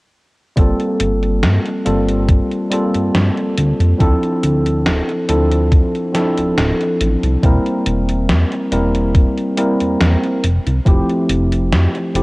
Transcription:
0.56 0.73 G1 loud
0.56 1.81 G3 medium
0.56 1.81 A#3 medium
0.56 1.81 C4 medium
0.56 1.82 F4 medium
0.56 1.82 A4 loud
0.56 kick loud
0.56 closed hi-hat soft
0.80 closed hi-hat soft
1.00 1.45 G1 medium
1.00 closed hi-hat medium
1.23 closed hi-hat soft
1.43 1.59 G2 medium
1.43 snare loud
1.43 closed hi-hat soft
1.65 closed hi-hat soft
1.85 2.41 G1 medium
1.85 2.67 G3 medium
1.85 2.67 A#3 medium
1.85 2.67 C4 medium
1.85 2.67 F4 medium
1.85 2.67 A4 medium
1.85 closed hi-hat medium
2.09 closed hi-hat soft
2.29 kick loud
2.29 closed hi-hat medium
2.52 closed hi-hat soft
2.70 3.95 G3 medium
2.70 3.95 A#3 medium
2.70 3.95 C4 medium
2.70 3.96 F4 medium
2.70 3.96 A4 medium
2.70 closed hi-hat medium
2.94 3.11 G2 soft
2.94 closed hi-hat soft
3.15 3.30 G2 medium
3.15 snare loud
3.15 closed hi-hat soft
3.37 closed hi-hat soft
3.58 3.73 D2 loud
3.58 closed hi-hat medium
3.80 3.94 F2 medium
3.80 closed hi-hat soft
3.98 4.16 D2 medium
3.98 5.23 F3 medium
3.98 5.24 C4 medium
3.98 5.24 D4 medium
3.98 5.24 E4 medium
3.98 5.25 A4 loud
3.98 kick loud
3.98 closed hi-hat medium
4.23 closed hi-hat soft
4.43 4.87 D2 medium
4.43 closed hi-hat medium
4.66 closed hi-hat soft
4.86 5.02 D1 medium
4.86 snare loud
4.86 closed hi-hat soft
5.09 closed hi-hat soft
5.28 5.83 D2 medium
5.28 6.09 F3 medium
5.28 6.10 C4 medium
5.28 6.10 D4 medium
5.28 6.10 E4 medium
5.28 6.10 A4 medium
5.28 closed hi-hat medium
5.51 closed hi-hat soft
5.72 kick loud
5.72 closed hi-hat medium
5.95 closed hi-hat soft
6.13 7.38 F3 medium
6.13 7.38 C4 medium
6.13 7.38 D4 medium
6.13 7.39 E4 medium
6.13 7.39 A4 medium
6.13 snare medium
6.13 closed hi-hat medium
6.38 6.54 D1 soft
6.38 closed hi-hat medium
6.58 6.73 D1 medium
6.58 snare loud
6.58 closed hi-hat soft
6.81 closed hi-hat soft
7.01 7.16 A1 loud
7.01 closed hi-hat medium
7.23 7.37 C2 medium
7.23 closed hi-hat soft
7.43 7.59 E1 loud
7.43 8.67 G3 medium
7.43 8.67 A#3 medium
7.43 8.67 C4 medium
7.43 8.68 E4 medium
7.43 8.68 A#4 loud
7.43 kick loud
7.43 closed hi-hat soft
7.66 closed hi-hat soft
7.86 8.31 E1 medium
7.86 closed hi-hat medium
8.09 closed hi-hat soft
8.29 8.45 E2 medium
8.29 snare loud
8.29 closed hi-hat soft
8.52 closed hi-hat soft
8.72 9.26 E1 medium
8.72 9.53 G3 medium
8.72 9.53 A#3 medium
8.72 9.53 C4 medium
8.72 9.53 E4 medium
8.72 9.54 A#4 medium
8.72 closed hi-hat medium
8.95 closed hi-hat soft
9.15 kick loud
9.15 closed hi-hat soft
9.37 closed hi-hat soft
9.57 10.41 G3 medium
9.57 10.41 A#3 medium
9.57 10.41 C4 medium
9.57 10.41 E4 medium
9.57 10.41 A#4 medium
9.57 closed hi-hat medium
9.80 9.97 E2 soft
9.80 closed hi-hat soft
10.01 10.16 E2 medium
10.01 snare loud
10.01 closed hi-hat soft
10.23 closed hi-hat soft
10.44 10.59 F1 loud
10.44 closed hi-hat medium
10.67 10.80 C2 medium
10.67 closed hi-hat soft
10.85 11.02 F1 loud
10.85 12.09 F3 medium
10.85 12.10 A3 medium
10.85 12.10 C4 medium
10.85 12.10 E4 medium
10.85 12.11 G4 loud
10.85 kick loud
10.85 closed hi-hat soft
11.09 closed hi-hat soft
11.29 11.73 F1 medium
11.29 closed hi-hat medium
11.52 closed hi-hat soft
11.72 11.88 F2 medium
11.72 snare loud
11.72 closed hi-hat soft
11.95 closed hi-hat soft
12.14 12.23 F1 medium
12.14 12.23 F3 medium
12.14 12.23 A3 medium
12.14 12.23 C4 medium
12.14 12.23 E4 medium
12.14 12.23 G4 medium
12.14 closed hi-hat medium

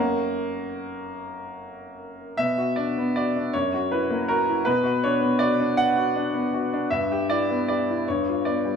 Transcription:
0.00 2.31 F#2 soft
0.00 1.14 A#3 medium
0.00 2.32 A#4 soft
0.00 2.32 C#5 soft
0.00 2.32 F#5 soft
2.37 3.50 B2 soft
2.37 2.76 E5 medium
2.58 2.88 F#4 soft
2.76 3.08 D4 soft
2.76 3.14 D5 medium
2.98 3.27 B3 soft
3.16 3.47 F#4 soft
3.16 3.54 D5 medium
3.36 3.54 D4 soft
3.53 4.64 F#2 medium
3.53 3.91 C#5 medium
3.74 4.03 F#4 soft
3.92 4.22 E4 soft
3.92 4.29 B4 medium
4.10 4.40 A#3 soft
4.28 4.59 F#4 soft
4.28 4.66 A#4 medium
4.49 4.67 E4 soft
4.65 6.86 B2 medium
4.65 5.03 B4 medium
4.84 5.14 F#4 soft
5.04 5.34 D4 soft
5.04 5.41 C#5 medium
5.21 5.51 B3 soft
5.39 5.71 F#4 soft
5.39 5.77 D5 medium
5.60 6.14 D4 soft
5.77 6.90 F#5 loud
5.97 6.27 F#4 soft
6.16 6.46 D4 soft
6.34 6.64 B3 soft
6.54 6.83 F#4 soft
6.73 6.91 D4 soft
6.90 8.02 G2 medium
6.90 7.28 E5 medium
7.12 7.41 G4 soft
7.30 7.60 E4 soft
7.30 7.67 D5 medium
7.51 7.80 B3 soft
7.68 7.99 G4 soft
7.68 8.06 D5 medium
7.90 8.07 E4 soft
8.08 8.76 G2 medium
8.08 8.45 C#5 medium
8.29 8.57 F4 soft
8.45 8.76 B3 soft
8.45 8.76 D5 medium
8.65 8.76 G3 soft

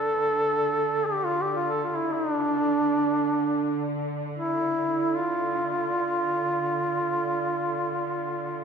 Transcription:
0.00 8.64 D3 soft
0.00 1.07 A4 medium
1.06 1.26 G4 medium
1.24 1.43 F4 medium
1.41 1.52 G4 medium
1.52 1.70 F4 medium
1.52 1.57 G4 soft
1.68 1.83 A4 medium
1.82 1.98 F4 medium
1.97 2.15 E4 medium
2.14 2.33 D#4 medium
2.33 4.06 D4 medium
4.38 5.18 E4 medium
5.16 8.64 F4 medium

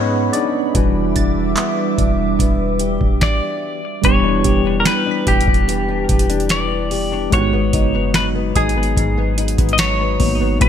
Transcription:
0.00 0.30 G#2 loud
0.00 0.75 G#2 medium
0.00 0.74 F#3 medium
0.00 0.71 G#3 medium
0.00 0.76 B3 medium
0.00 1.57 B3 medium
0.00 0.77 C#4 medium
0.00 0.32 D#4 medium
0.00 0.76 D#4 medium
0.00 0.71 F#4 medium
0.00 0.72 G#4 medium
0.00 0.76 B4 medium
0.00 0.77 C#5 loud
0.00 0.77 D#5 loud
0.00 0.72 F#5 medium
0.00 0.72 B5 medium
0.33 0.74 D4 medium
0.33 0.83 D#4 medium
0.33 1.94 D5 medium
0.33 closed hi-hat medium
0.75 1.14 E1 loud
0.75 3.80 E3 medium
0.75 4.00 G3 medium
0.75 3.19 G3 medium
0.75 4.00 D4 medium
0.75 4.00 F#4 medium
0.75 3.19 E5 medium
0.75 3.19 D6 medium
0.75 kick loud
0.75 closed hi-hat medium
1.16 1.55 E1 loud
1.16 1.98 D4 medium
1.16 3.21 A6 medium
1.16 kick medium
1.16 closed hi-hat medium
1.57 2.39 B3 medium
1.57 clap loud
1.57 closed hi-hat medium
1.98 2.38 E1 loud
1.98 3.80 D4 medium
1.98 kick medium
1.98 closed hi-hat medium
2.39 2.98 E1 loud
2.39 3.80 B3 medium
2.39 kick medium
2.39 closed hi-hat medium
2.79 3.80 G4 medium
2.79 closed hi-hat medium
3.01 3.21 E1 loud
3.01 kick medium
3.21 4.04 D5 medium
3.21 kick loud
3.21 snare medium
4.02 4.43 E1 loud
4.02 5.67 E3 medium
4.02 7.27 G3 medium
4.02 7.28 B3 medium
4.02 7.29 D4 medium
4.02 4.75 C#5 loud
4.02 kick loud
4.02 closed hi-hat medium
4.06 7.30 G4 medium
4.24 4.64 D4 medium
4.44 4.84 E1 loud
4.44 5.26 G4 medium
4.44 kick medium
4.44 closed hi-hat medium
4.65 5.05 D4 medium
4.80 4.86 A#4 medium
4.85 6.50 B3 medium
4.85 5.29 B4 medium
4.85 6.91 G6 medium
4.85 snare loud
4.85 closed hi-hat medium
5.06 5.46 D4 medium
5.11 7.13 B6 medium
5.27 6.06 E1 loud
5.27 6.08 G4 medium
5.27 6.54 G4 medium
5.27 kick medium
5.27 closed hi-hat medium
5.41 closed hi-hat medium
5.47 5.87 D4 medium
5.47 kick loud
5.54 closed hi-hat soft
5.68 7.40 E3 medium
5.68 closed hi-hat medium
5.88 6.28 D4 medium
6.09 7.28 E1 loud
6.09 6.90 G4 medium
6.09 kick medium
6.09 closed hi-hat medium
6.19 closed hi-hat medium
6.30 6.69 D4 medium
6.30 closed hi-hat medium
6.40 closed hi-hat soft
6.49 7.53 B3 medium
6.49 7.33 D5 loud
6.49 snare loud
6.49 closed hi-hat medium
6.71 7.11 D4 medium
6.91 7.41 G4 medium
6.91 open hi-hat medium
7.12 7.41 D4 medium
7.30 7.72 G#1 loud
7.30 8.96 G#2 medium
7.30 10.15 G#3 medium
7.30 10.16 B3 medium
7.30 10.16 D#4 medium
7.30 8.11 C#5 loud
7.30 9.37 F#6 medium
7.30 kick loud
7.30 closed hi-hat medium
7.35 10.17 F#4 medium
7.53 7.93 B3 medium
7.73 8.52 F#1 loud
7.73 8.54 D#4 medium
7.73 kick medium
7.73 closed hi-hat medium
7.94 8.34 B3 medium
8.14 9.78 F#3 medium
8.14 8.26 B4 medium
8.14 snare loud
8.14 closed hi-hat medium
8.35 8.75 B3 medium
8.56 8.95 G#1 loud
8.56 9.37 D#4 medium
8.56 9.76 G#4 medium
8.56 10.60 D#6 medium
8.56 kick loud
8.56 closed hi-hat medium
8.69 closed hi-hat medium
8.76 9.16 B3 medium
8.83 closed hi-hat soft
8.97 9.56 G#1 loud
8.97 10.61 G#2 medium
8.97 kick loud
8.97 closed hi-hat medium
9.17 9.57 B3 medium
9.38 10.19 D#4 medium
9.38 closed hi-hat medium
9.48 closed hi-hat medium
9.58 10.18 G#1 loud
9.58 9.98 B3 medium
9.58 kick loud
9.58 closed hi-hat medium
9.69 closed hi-hat soft
9.73 9.79 D#5 medium
9.78 10.69 F#3 medium
9.78 10.57 C#5 loud
9.78 snare loud
9.78 closed hi-hat medium
9.99 10.39 B3 medium
10.19 10.59 G#1 loud
10.19 10.61 A#3 medium
10.19 10.61 B3 soft
10.19 10.69 D#4 medium
10.19 10.61 D#4 soft
10.19 10.62 F#4 medium
10.19 kick loud
10.19 open hi-hat medium
10.40 10.69 B3 medium
10.59 10.69 A1 loud
10.59 10.69 A2 medium
10.59 10.69 A3 medium
10.59 10.69 C4 medium
10.59 10.69 E4 medium
10.59 10.69 C5 loud
10.59 kick loud
10.59 closed hi-hat medium
10.64 10.69 F#4 medium

